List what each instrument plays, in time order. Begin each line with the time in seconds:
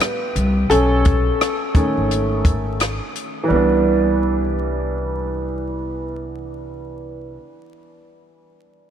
Already playing: upright piano B3 D4 E4 G4
0.00 cross-stick, closed hi-hat
0.36 upright bass C2, closed hi-hat
0.70 upright bass B1, upright piano C#4 A4, closed hi-hat
1.05 kick, closed hi-hat
1.41 cross-stick, closed hi-hat
1.74 upright piano D#3 A3 C#4, kick, closed hi-hat
1.97 upright bass G#1
2.11 closed hi-hat
2.45 kick, closed hi-hat
2.80 cross-stick, closed hi-hat
3.16 closed hi-hat
3.43 upright piano E3
3.48 upright bass C2, upright piano G3 B3
3.56 upright piano D4